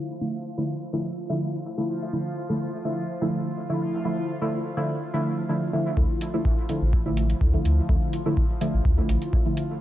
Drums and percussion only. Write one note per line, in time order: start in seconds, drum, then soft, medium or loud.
5.97 kick loud
6.21 closed hi-hat medium
6.45 kick loud
6.69 closed hi-hat medium
6.93 kick loud
7.17 closed hi-hat medium
7.30 closed hi-hat soft
7.41 kick loud
7.65 closed hi-hat medium
7.89 kick loud
8.13 closed hi-hat medium
8.37 kick loud
8.61 closed hi-hat medium
8.85 kick loud
9.09 closed hi-hat medium
9.22 closed hi-hat soft
9.33 kick loud
9.57 closed hi-hat medium